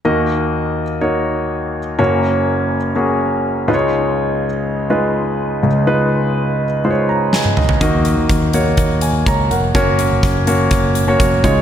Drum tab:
HH |----------------|----------------|----------------|----------------|
SD |----------------|----------------|----------------|------------o---|
T1 |----------------|----------------|----------------|-------------o--|
T2 |----------------|----------------|----------------|--------------o-|
FT |----------------|----------------|----------------|---------------o|
BD |----------------|----------------|----------------|----------------|

HH |x-x-x-x-x-x-x-x-|x-x-x-x-x-x-x-x-|
SD |----------------|----------------|
T1 |----------------|----------------|
T2 |----------------|----------------|
FT |----------------|----------------|
BD |o---o---o---o---|o---o---o---o-o-|